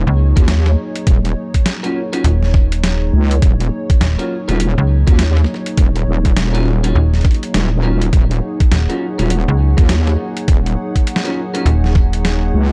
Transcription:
Already playing: F#3 A#3 D#4 G#4 C#5 D#5
0.07 C#2
0.36 D#2 C#4 F4 F#4 A#4, kick, closed hi-hat
0.48 snare, closed hi-hat
0.66 snare
0.96 closed hi-hat
1.07 D#1, kick, closed hi-hat
1.25 closed hi-hat
1.54 kick, closed hi-hat
1.66 snare, closed hi-hat
1.83 C#4 F4 F#4 A#4, closed hi-hat
2.13 C#4 F4 F#4 A#4, closed hi-hat
2.24 D#1, closed hi-hat
2.43 snare
2.54 kick, snare
2.72 closed hi-hat
2.84 snare, closed hi-hat
3.13 C#2
3.31 closed hi-hat
3.42 D#1, kick, closed hi-hat
3.60 closed hi-hat
3.90 kick, closed hi-hat
4.01 D#1, snare, closed hi-hat
4.19 C#4 F4 F#4 A#4, closed hi-hat
4.48 D#1 C#4 F4 F#4 A#4, closed hi-hat
4.60 closed hi-hat
4.78 C#2
5.07 D#2 C#4 F4 F#4 A#4, kick, closed hi-hat
5.19 snare, closed hi-hat
5.37 snare
5.44 snare
5.54 snare
5.66 closed hi-hat
5.77 D#1, kick, closed hi-hat
5.96 closed hi-hat
6.07 D#1
6.25 kick, closed hi-hat
6.36 D#1, snare, closed hi-hat
6.54 C#4 F4 F#4 A#4, closed hi-hat
6.83 C#4 F4 F#4 A#4, closed hi-hat
6.95 D#1
7.14 snare, closed hi-hat
7.21 kick, snare, closed hi-hat
7.25 closed hi-hat
7.31 closed hi-hat
7.34 closed hi-hat
7.43 closed hi-hat
7.54 D#1, snare, closed hi-hat
7.83 C#4 F4 F#4 A#4
8.02 closed hi-hat
8.13 D#1 F#5, kick, closed hi-hat
8.31 closed hi-hat
8.60 kick, closed hi-hat
8.72 D#1, snare, closed hi-hat
8.89 C#4 F4 F#4 A#4, closed hi-hat
9.18 D#1 C#4 F4 F#4 A#4, closed hi-hat
9.30 closed hi-hat
9.48 C#2
9.77 D#2 C#4 F4 F#4 A#4, kick, closed hi-hat
9.89 snare, closed hi-hat
10.07 snare
10.37 closed hi-hat
10.48 D#1, kick, closed hi-hat
10.66 closed hi-hat
10.96 kick, closed hi-hat
11.07 closed hi-hat
11.16 snare
11.24 C#4 F4 F#4 A#4, closed hi-hat
11.54 C#4 F4 F#4 A#4, closed hi-hat
11.66 D#1, closed hi-hat
11.84 snare
11.95 kick, snare
12.13 closed hi-hat
12.25 snare, closed hi-hat
12.54 C#2

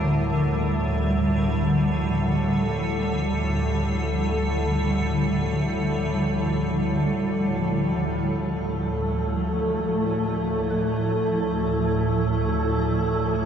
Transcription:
Already playing: D2 A2 D3 F3 G3 A#4
1.13 A4
7.89 D2 A2 A4
7.93 A3
8.32 E4
10.70 A4

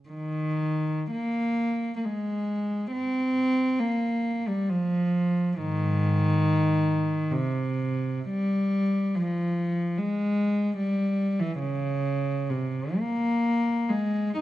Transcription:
0.09 D#3
1.11 A#3
1.96 A#3
2.05 G#3
2.92 C4
3.79 A#3
4.48 G3
4.70 F3
5.57 G#2 D#3
7.31 C3
8.29 G3
9.16 F3
9.98 G#3
10.78 G3
11.40 E3
11.60 C#3
12.50 C3
12.98 A#3
13.90 G#3
14.38 D#4

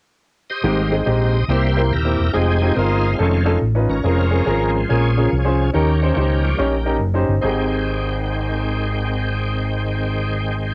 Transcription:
0.50 G4 C5 D#5
0.64 G#1 G#2 G3 G#3 A#3 C4 D#4 G4
0.92 G#3 C4 D#4 G#4
1.06 A#1 G#3 C4 D#4 G4
1.48 C2 C3 G3 A#3 C4 E4 G4 C5
1.77 A#3 C4 E4 A#4
1.91 D#1 E4 G4 A#4
2.05 A#3 C4 E4 G4
2.19 E1
2.33 F1 G#3 C4 D#4 F4 G4 G#4
2.61 C4 D#4 F4 G4
2.74 G1 C4 D#4 F4 G4 A#4
2.78 G#3 C4 F4
3.18 F1 D#3 A3 C#4 D#4 F4 A4
3.45 C#4 D#4 F4 A4
3.61 A1
3.75 C#4 D#4 F4 B4
3.89 G#1 C#4 A#4
4.04 F1 F3 G#3 C4 C#4 F4 G#4 A#4
4.31 C#4 F4 G#4 A#4
4.46 G#1 C#4 F4 G#4 A#4
4.89 A#1 C#4 F4 G#4 A#4
5.17 C#3 G#3 C4 C#4 F4 G#4 A#4
5.32 C2
5.45 C#4 F4 G#4 C5
5.73 D#2 D#3 A#3 C#4 D#4 G4 A#4
6.02 C#4 D#4 G4 C5
6.16 C#2 C#4 D#4 G4 C5
6.43 F3 G3 C#4
6.58 A#1 C#4 D#4 G4 C#5
6.86 C#4 D#4 G4 A#4
7.01 F#1
7.14 C#4 D#4 G4 C5
7.28 G1
7.41 G#1 D#3 G#3 C4 D#4 G4 G#4 G5

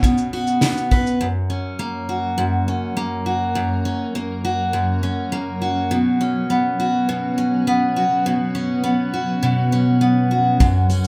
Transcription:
Already playing: B3 C#4 F#4 B4
0.03 B2, kick, tambourine, shaker
0.18 shaker
0.33 F#4, tambourine
0.47 shaker
0.61 B3, snare, tambourine, shaker
0.77 shaker
0.91 B4, kick, tambourine
1.07 shaker
1.21 F#2 F#3 C#4 A#4 C#5
1.50 C#4
1.79 A#3
2.09 F#4
2.38 F#2
2.68 C#4
2.97 A#3
3.26 F#4
3.55 F#2
3.85 C#4
4.15 A#3
4.45 F#4
4.73 F#2
5.03 C#4
5.32 A#3
5.62 F#4
5.91 B2 B4
6.21 C#4
6.50 B3
6.80 F#4
7.09 B2
7.38 C#4
7.67 B3
7.96 F#4
8.26 B2
8.55 C#4
8.84 B3
9.14 F#4
9.43 B2
9.72 C#4
10.01 B3
10.31 F#4
10.60 F#2 A#4, kick, tambourine, shaker
10.90 C#4, tambourine, shaker

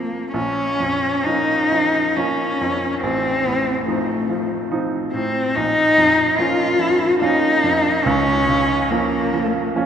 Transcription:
Already playing: F3 A#3 C4
0.32 A#1 C#4
0.80 F2
1.24 F3 A#3 C#4 D#4
1.72 F3
2.17 F3 A#3 C#4
2.61 F2
3.01 A1 C4
3.45 A2
3.84 A3
3.88 F3 C4 D#4
4.29 F3
4.71 F3 C4 D#4
5.12 A2 C4
5.56 A#1 D#4
5.98 F2
6.38 F3 A#3 C#4 F4
6.79 F3
7.20 F3 A#3 C#4 D#4
7.64 F2
8.04 C#2 C#4
8.49 C#3
8.90 F3 A#3 C#4
9.33 F3
9.76 F3 A#3 C#4

